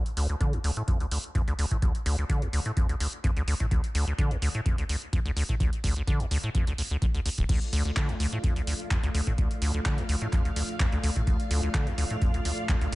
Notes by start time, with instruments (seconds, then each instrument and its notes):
0.06 closed hi-hat
0.17 acid bass D2, open hi-hat
0.30 closed hi-hat
0.41 acid bass D3, kick, closed hi-hat
0.53 acid bass D2, closed hi-hat
0.64 acid bass D2, open hi-hat
0.77 acid bass A2, closed hi-hat
0.88 acid bass F2, kick, closed hi-hat
1.00 acid bass D2, closed hi-hat
1.11 acid bass D2, open hi-hat
1.24 closed hi-hat
1.35 acid bass F2, kick, closed hi-hat
1.48 acid bass D2, closed hi-hat
1.59 acid bass D2, open hi-hat
1.71 acid bass A2, kick, closed hi-hat
1.82 acid bass D2, kick, closed hi-hat
1.95 closed hi-hat
2.06 acid bass D2, open hi-hat
2.19 acid bass D2
2.29 acid bass D3, kick, closed hi-hat
2.42 acid bass D2, closed hi-hat
2.53 acid bass D2, open hi-hat
2.66 acid bass A2, closed hi-hat
2.77 acid bass F2, kick, closed hi-hat
2.89 acid bass D2, closed hi-hat
3.00 acid bass D2, open hi-hat
3.13 closed hi-hat
3.24 acid bass F2, kick, closed hi-hat
3.37 acid bass D2, closed hi-hat
3.48 acid bass D2, open hi-hat
3.60 acid bass A2, kick, closed hi-hat
3.71 acid bass D2, kick, closed hi-hat
3.84 closed hi-hat
3.95 acid bass D2, open hi-hat
4.07 acid bass D2
4.18 acid bass D3, kick, closed hi-hat
4.31 acid bass D2, closed hi-hat
4.42 acid bass D2, open hi-hat
4.55 acid bass A2, closed hi-hat
4.66 acid bass F2, kick, closed hi-hat
4.78 acid bass D2, closed hi-hat
4.89 acid bass D2, open hi-hat
5.02 closed hi-hat
5.13 acid bass F2, kick, closed hi-hat
5.25 acid bass D2, closed hi-hat
5.37 acid bass D2, open hi-hat
5.49 acid bass A2, kick, closed hi-hat
5.60 acid bass D2, kick, closed hi-hat
5.73 closed hi-hat
5.84 acid bass D2, kick, open hi-hat
5.96 acid bass D2, closed hi-hat
6.07 acid bass D3, kick, closed hi-hat
6.20 acid bass D2, closed hi-hat
6.31 acid bass D2, open hi-hat
6.44 acid bass A2, closed hi-hat
6.55 acid bass F2, kick, closed hi-hat
6.67 acid bass D2, closed hi-hat
6.78 acid bass D2, open hi-hat
6.91 acid bass D2, closed hi-hat
7.02 acid bass D2, kick, closed hi-hat
7.14 acid bass D2, closed hi-hat
7.26 acid bass D2, open hi-hat
7.38 acid bass D1, kick, closed hi-hat
7.49 acid bass D2, string machine A3 F4 D5 F5, kick, closed hi-hat, crash
7.62 closed hi-hat
7.73 acid bass D2, open hi-hat
7.85 acid bass D2, closed hi-hat
7.96 acid bass D3, kick, clap, closed hi-hat
8.09 acid bass D2, closed hi-hat
8.20 acid bass D2, open hi-hat
8.33 acid bass A2, closed hi-hat
8.44 acid bass F2, kick, closed hi-hat
8.56 acid bass D2, closed hi-hat
8.67 acid bass D2, open hi-hat
8.80 closed hi-hat
8.91 acid bass F2, kick, clap, closed hi-hat
9.03 acid bass D2, closed hi-hat
9.14 acid bass D2, open hi-hat
9.27 acid bass A2, kick
9.38 acid bass D2, kick, closed hi-hat
9.51 closed hi-hat
9.62 acid bass D2, open hi-hat
9.74 acid bass D2, closed hi-hat
9.85 acid bass D3, kick, clap, closed hi-hat
9.98 acid bass D2, closed hi-hat
10.09 acid bass D2, open hi-hat
10.22 acid bass A2, closed hi-hat
10.33 acid bass F2, kick, clap, closed hi-hat
10.45 acid bass D2, closed hi-hat
10.56 acid bass D2, open hi-hat
10.69 closed hi-hat
10.80 acid bass F2, kick, clap, closed hi-hat
10.92 acid bass D2, closed hi-hat
11.03 acid bass D2, open hi-hat
11.16 acid bass A2, kick, closed hi-hat
11.27 acid bass D2, kick, closed hi-hat
11.40 closed hi-hat
11.51 acid bass D2, open hi-hat
11.63 acid bass D2, closed hi-hat
11.74 acid bass D3, kick, clap, closed hi-hat
11.87 acid bass D2, closed hi-hat
11.98 acid bass D2, open hi-hat
12.11 acid bass A2, closed hi-hat
12.22 acid bass F2, kick, closed hi-hat
12.34 acid bass D2, closed hi-hat
12.45 acid bass D2, open hi-hat
12.58 closed hi-hat
12.69 acid bass F2, kick, clap, closed hi-hat
12.81 acid bass D2, closed hi-hat